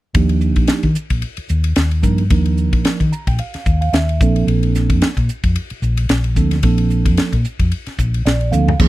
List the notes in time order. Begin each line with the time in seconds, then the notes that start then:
0.14 D#2 F3 A#3 D4 D#4 G4, kick, ride
0.29 ride
0.41 hi-hat pedal
0.56 A#1, kick, ride
0.67 muted fingered electric bass stroke, snare, ride
0.83 D#3, kick, ride
0.95 hi-hat pedal
1.10 A#1, kick, ride
1.22 ride
1.37 muted fingered electric bass stroke, ride
1.49 D#2, hi-hat pedal
1.64 ride
1.76 D#2, snare, ride
1.91 ride
2.02 G2 F3 A#3 D4 D#4 A#4, kick, hi-hat pedal
2.18 ride
2.30 D#2 F3 A#3 D4 D#4 A#4, kick, ride
2.46 ride
2.57 hi-hat pedal
2.73 A#1, kick, ride
2.85 muted fingered electric bass stroke, snare, ride
3.00 D#3, kick, ride
3.12 A#5, hi-hat pedal
3.27 A#1 G5, kick, ride
3.39 F5, ride
3.54 muted fingered electric bass stroke, snare, ride
3.65 D#2, kick, hi-hat pedal
3.81 F5, ride
3.93 D#2 E5, snare, ride
4.09 ride
4.20 A#1 F3 A#3 C4 D4 A4, kick, hi-hat pedal
4.36 ride
4.47 A#1, ride
4.63 ride
4.75 snare, hi-hat pedal
4.90 F2, kick, ride
5.01 muted fingered electric bass stroke, snare, ride
5.17 A#2, kick, ride
5.29 hi-hat pedal
5.44 F2, kick, ride
5.56 ride
5.70 muted fingered electric bass stroke, ride
5.82 A#1, hi-hat pedal
5.97 ride
6.09 A#1, snare, ride
6.24 ride
6.35 D2 F3 A#3 C4 D4 A4, kick, hi-hat pedal
6.51 snare, ride
6.63 A#1 F3 A#3 C4 D4 A4, kick, ride
6.78 ride
6.90 hi-hat pedal
7.06 F2, kick, ride
7.17 muted fingered electric bass stroke, snare, ride
7.32 A#2, kick, ride
7.44 hi-hat pedal
7.59 F2, kick, ride
7.72 ride
7.86 muted fingered electric bass stroke, snare, ride
7.99 A#1, kick, hi-hat pedal
8.14 ride
8.26 A#1 D5, snare, ride
8.41 ride
8.51 D2 F3 A#3 C4 D4 A4 F5, hi-hat pedal, high tom
8.68 floor tom
8.79 D#2 F3 A#3 C#4 D#4 G#4, kick, crash